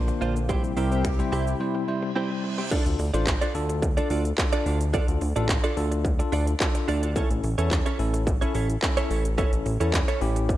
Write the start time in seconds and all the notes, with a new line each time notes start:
Already playing: A#1 D3 A#3 C4 D4 F4 C5
0.08 muted clean electric guitar stroke, shaker
0.21 A#1 A#3 D4 F4 C5, shaker
0.36 shaker
0.49 C3 G3 C4 E4 G4 C5, kick, shaker
0.64 shaker
0.77 C2 G3 C4 E4 G4 A#4 C5, open hi-hat, shaker
0.91 C4 E4 G4 C5, shaker
1.04 finger snap, muted clean electric guitar stroke, kick, shaker
1.19 G3 C4 E4 C5, muted clean electric guitar stroke, shaker
1.32 C2 C4 E4 G4 C5, open hi-hat, shaker
1.47 muted clean electric guitar stroke, shaker
1.60 G3 C4 E4 C5, muted clean electric guitar stroke, reverse cymbal
1.75 muted clean electric guitar stroke
1.88 G3 C4 E4 C5
2.03 muted clean electric guitar stroke
2.15 G3 C4 E4 G4 C5
2.30 muted clean electric guitar stroke
2.43 muted clean electric guitar stroke
2.58 C4 E4 G4 C5
2.71 D4 F4 A4 D5, kick, crash, shaker
2.86 D2, muted clean electric guitar stroke, closed hi-hat, shaker
2.99 D2, muted clean electric guitar stroke, open hi-hat, shaker
3.14 A1 D4 F4 A4 C5 D5, closed hi-hat, shaker
3.27 kick, clap, shaker
3.41 D4 F4 A4 D5, closed hi-hat, shaker
3.55 D2 D4 F4 A4, open hi-hat, shaker
3.69 muted clean electric guitar stroke, closed hi-hat, shaker
3.82 muted clean electric guitar stroke, kick, shaker
3.97 D4 F4 A4 D5, closed hi-hat, shaker
4.10 D2 D4 F4 A4 D5, open hi-hat, shaker
4.25 muted clean electric guitar stroke, closed hi-hat, shaker
4.38 D4 F4 A4, muted clean electric guitar stroke, kick, clap, shaker
4.53 D4 F4 A4 D5, closed hi-hat, shaker
4.66 D2 D4 F4 A4 D5, open hi-hat, shaker
4.81 closed hi-hat, shaker
4.93 D4 F4 A4 D5, kick, shaker
5.08 D2, muted clean electric guitar stroke, closed hi-hat, shaker
5.21 D2, muted clean electric guitar stroke, open hi-hat, shaker
5.36 A1 D4 F4 A4 D5, closed hi-hat, shaker
5.49 kick, clap, shaker
5.64 D4 F4 A4 D5, closed hi-hat, shaker
5.77 D2 D4 F4 A4, muted clean electric guitar stroke, open hi-hat, shaker
5.92 muted clean electric guitar stroke, closed hi-hat, shaker
6.05 kick, shaker
6.19 D4 F4 A4, muted clean electric guitar stroke, closed hi-hat, shaker
6.32 D2 D4 F4 A4 D5, open hi-hat, shaker
6.47 muted clean electric guitar stroke, closed hi-hat, shaker
6.60 D4 F4 A4, muted clean electric guitar stroke, kick, clap, shaker
6.75 muted clean electric guitar stroke, closed hi-hat, shaker
6.88 D2 D4 F4 A4 D5, open hi-hat, shaker
7.03 D4 F4 A4 D5, closed hi-hat, shaker
7.16 C#4 E4 A4 C#5, kick, shaker
7.30 A1, muted clean electric guitar stroke, closed hi-hat, shaker
7.44 A1, muted clean electric guitar stroke, open hi-hat, shaker
7.58 E2 C#4 E4 A4 C#5, closed hi-hat, shaker
7.71 muted clean electric guitar stroke, kick, clap, shaker
7.86 C#4 E4 A4 C#5, closed hi-hat, shaker
7.99 A1 C#4 E4 A4, muted clean electric guitar stroke, open hi-hat, shaker
8.14 muted clean electric guitar stroke, closed hi-hat, shaker
8.27 muted clean electric guitar stroke, kick, shaker
8.41 C#4 E4 A4 C#5, closed hi-hat, shaker
8.54 A1 C#4 E4 A4 C#5, open hi-hat, shaker
8.69 muted clean electric guitar stroke, closed hi-hat, shaker
8.82 C#4 E4 A4, muted clean electric guitar stroke, kick, clap, shaker
8.97 C#4 E4 A4 C#5, closed hi-hat, shaker
9.10 A1 C#4 E4 A4 C#5, open hi-hat, shaker
9.25 muted clean electric guitar stroke, closed hi-hat, shaker
9.38 C#4 E4 A4 C#5, kick, shaker
9.53 A1, muted clean electric guitar stroke, closed hi-hat, shaker
9.66 A1, muted clean electric guitar stroke, open hi-hat, shaker
9.80 E2 C#4 E4 A4 C#5, closed hi-hat, shaker
9.93 kick, clap, shaker
10.08 C#4 E4 A4 C#5, closed hi-hat, shaker
10.21 A1 C#4 E4 G4, muted clean electric guitar stroke, open hi-hat, shaker
10.36 muted clean electric guitar stroke, closed hi-hat, shaker
10.49 muted clean electric guitar stroke, kick, shaker